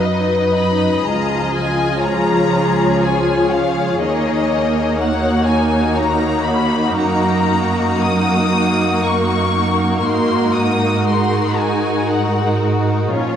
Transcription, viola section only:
Already playing: F#3 D#4
1.06 F3 F4
4.02 A#3 D#4
10.05 D#4
11.07 G#3
13.11 F3 C#4

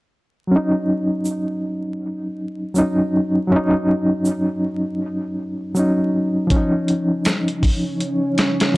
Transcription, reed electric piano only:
0.47 F#3
0.51 C#4
0.56 D#4
2.74 F#3 C#4
2.78 D#4
3.47 F#3
3.52 C#4
3.56 D#4
5.74 F#3 C#4
5.79 D#4
6.47 F3
6.52 C#4
6.56 D#4

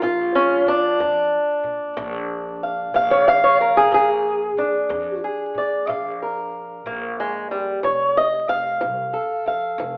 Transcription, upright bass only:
0.02 A#1
0.67 A#1
0.99 F2
1.64 A#2
1.97 A#1
2.95 A#1
3.91 A#1
4.57 A#1
4.89 F2
5.55 A#2
5.87 A#1
6.86 A#1
7.83 F1
8.48 F1
8.81 C2
9.46 F2
9.78 F1

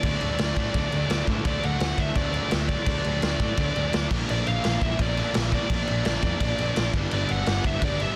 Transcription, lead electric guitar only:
Already playing: D5
1.47 D5
1.64 F#5
1.99 E5
2.16 D5
2.68 D5
4.30 D5
4.48 F5
4.83 E5
5.02 D5
5.54 D5
7.14 D5
7.31 F#5
7.66 E5
7.84 D5
8.01 E5

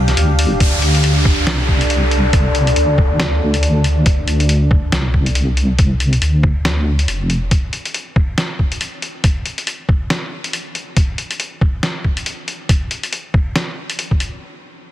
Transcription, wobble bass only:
Already playing: C2
0.17 D2
0.60 D2
1.46 C2
2.76 D2
4.06 D2
4.92 C2
6.22 D2
7.08 F1

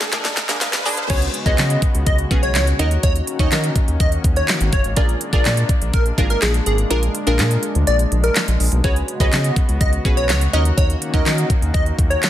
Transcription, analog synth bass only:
0.01 D2
0.13 A#1
0.49 A#1
0.73 A#1
0.86 B1
1.10 C#2
1.46 C#2
1.58 C#3
1.95 C#2
2.07 C#2
2.31 B1
2.55 C#2
2.79 D#2
3.03 D#2
3.39 D#2
3.52 D#3
3.88 D#2
4.00 D#2
4.24 D#2
4.61 G#1
4.73 F#1
4.85 G#1
4.97 A#1
5.33 A#1
5.45 A#2
5.82 A#1
5.94 A#1
6.18 G#1
6.42 A#1
6.66 G#1
6.91 A#1
7.27 A#1
7.39 A#2
7.75 D2
7.88 A#1
8.12 A#1
8.48 A#1
8.60 A#1
8.72 B1
8.84 C#2
9.20 C#2
9.33 C#3
9.69 C#2
9.81 C#2
10.05 B1
10.29 C#2
10.53 D#2
10.78 D#2
11.14 D#2
11.26 D#3
11.62 D#2
11.74 D#2
11.99 D#2

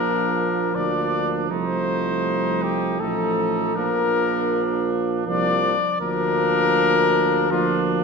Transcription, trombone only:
Already playing: F3
0.75 F3
1.51 F3
3.01 F3
3.77 F3
5.27 F3
6.01 F3
7.51 F3

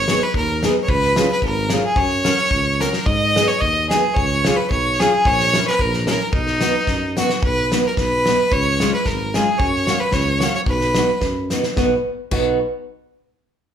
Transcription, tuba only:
Already playing: G#1
0.34 D#2
0.88 C#2
1.42 G#1
1.96 F#2
2.51 C#2
3.06 G#2
3.62 D#2
4.17 C#2
4.71 B1
5.26 A#1
5.79 A#1
6.33 B1
6.87 F#2
7.43 B1
7.97 B1
8.52 C#2
9.06 G#1
9.59 F#2
10.12 C#2
10.66 B1
11.22 F#2
11.78 B1
12.32 B1

